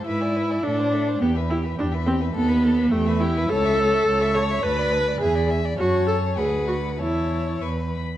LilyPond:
<<
  \new Staff \with { instrumentName = "Violin" } { \time 2/4 \key e \phrygian \tempo 4 = 104 e''16 gis''16 e''16 gis''16 e''16 a''16 e''16 a''16 | g''16 e''16 g''16 e''16 g''16 e''16 g''16 e''16 | a''16 b''16 a''16 b''16 g''16 e''16 g''16 e''16 | \key a \major a''16 cis'''16 a''16 cis'''16 a''16 cis'''16 a''16 cis'''16 |
a''16 b''16 a''16 b''16 gis''16 b''16 gis''16 b''16 | a''4 fis''4 | a''4 cis'''8 b''8 | }
  \new Staff \with { instrumentName = "Violin" } { \time 2/4 \key e \phrygian b'16 d''16 b'16 d''16 a'16 c''16 a'16 c''16 | g'16 b'16 g'16 b'16 g'16 b'16 g'16 b'16 | a'16 b'16 a'16 b'16 g'16 b'16 g'16 b'16 | \key a \major cis''16 e''16 cis''16 e''16 cis''16 e''16 cis''16 e''16 |
b'16 d''16 b'16 d''16 e''16 d''16 e''16 d''16 | cis''4 b'4 | cis''4 b'8. r16 | }
  \new Staff \with { instrumentName = "Viola" } { \time 2/4 \key e \phrygian e'4 d'4 | b8 e'8 d'8 c'8 | b4 a8 e'8 | \key a \major a'4. cis''8 |
b'4 gis'8 r8 | fis'8 a'8 gis'8 fis'8 | e'4 r4 | }
  \new Staff \with { instrumentName = "Cello" } { \clef bass \time 2/4 \key e \phrygian gis,4 a,4 | e,4 e,4 | dis,4 e,4 | \key a \major cis,4 cis,4 |
d,4 e,4 | fis,4 d,4 | e,4 e,8 r8 | }
>>